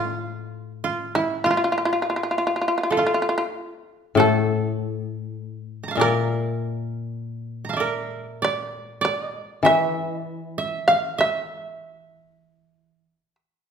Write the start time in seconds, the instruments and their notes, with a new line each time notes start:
Already playing: koto A2 F4 A4, shamisen F4
0.84 koto F4
1.15 shamisen E4, koto E4
1.44 shamisen F4, koto F4
1.51 shamisen F4
1.57 shamisen F4
1.64 shamisen F4
1.72 shamisen F4
1.78 shamisen F4
1.85 shamisen F4
1.93 shamisen F4
2.02 shamisen F4
2.10 shamisen F4
2.16 shamisen F4
2.23 koto E4, shamisen F4
2.31 shamisen F4
2.38 shamisen F4
2.47 shamisen F4
2.56 shamisen F4
2.62 shamisen F4
2.68 shamisen F4
2.78 shamisen F4
2.83 shamisen F4
2.90 shamisen F4, koto A4
2.97 koto F4, shamisen F4
3.07 shamisen F4
3.14 shamisen F4
3.22 shamisen F4
3.29 shamisen F4
3.38 shamisen F4
4.15 koto A2 A4
4.20 shamisen A4
5.83 koto A#5
5.88 koto F5 A5
5.95 koto A#2 E5
5.99 shamisen A#4, koto A#4 D5
7.65 koto A#5
7.69 koto F5 A5
7.73 koto D5 E5
7.80 koto A#4
8.42 koto D5, shamisen D5
9.01 koto D5, shamisen D5
9.63 koto E3 E5, shamisen E5
10.10 koto D#5
10.21 koto D5
10.58 koto E5
10.88 shamisen F5, koto F5
11.18 koto E5, shamisen E5